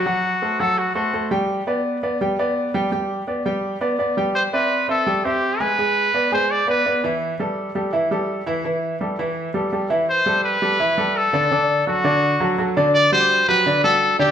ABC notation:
X:1
M:4/4
L:1/8
Q:1/4=168
K:Am
V:1 name="Trumpet"
^F3 A F F2 z | z8 | z8 | c B2 A2 G2 B- |
B3 c d B2 z | z8 | z8 | c2 B4 A2- |
A2 ^F4- F z | d c2 B2 A2 G |]
V:2 name="Grand piano"
[^F,^F^f]2 [A,Ac] [F,Ff]2 [A,Ac] [A,Ac] [G,Gg]- | [G,Gg] [B,Bd]2 [B,Bd] [G,Gg] [B,Bd]2 [G,Gg] | [G,Gg]2 [B,Bd] [G,Gg]2 [B,Bd] [B,Bd] [G,Gg]- | [G,Gg] [Cde]2 [Cce] [G,Gg] [Cce]2 [^G,^G^g] |
[^G,^G^g]2 [B,Bd] [G,Gg]2 [B,Bd] [B,Bd] [E,Ee]- | [E,Ee] [G,GA]2 [G,GA] [E,Ee] [G,GA]2 [E,Ee] | [E,Ee]2 [G,GA] [E,Ee]2 [G,GA] [G,GA] [E,Ee] | z [G,GA]2 [G,GA] [E,Ee] [G,GA]2 [D,Dd] |
[D,Dd]2 [^F,^FA] [D,Dd]2 [F,FA] [F,FA] [D,Dd]- | [D,Dd] [G,^FG]2 [^F,FG] [D,Dd] [G,FG]2 [D,Dd] |]